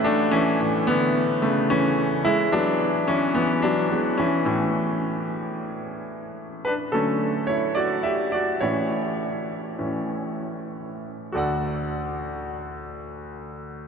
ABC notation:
X:1
M:4/4
L:1/16
Q:1/4=109
K:D
V:1 name="Grand piano"
[A,D]2 [E,C]4 [D,B,]4 [C,A,]2 [E,C]3 z | [^G,E]2 [F,D]4 [E,C]2 [E,B,]2 [F,D]4 [E,C]2- | [E,C]2 z12 z2 | [DB]2 [CA]4 [Ec]2 [Fd]2 [Ge]2 [Fd]2 [Ec]2- |
[Ec]12 z4 | [FAdf]16 |]
V:2 name="Grand piano" clef=bass
[A,,E,C]2 z2 [A,,E,C]2 z8 z2 | z2 [E,^G,B,]2 z8 [E,G,B,]2 z2 | [A,,E,C]16 | z2 [D,F,A,]12 [A,,E,C]2 |
z6 [A,,E,C]2 z8 | D,,16 |]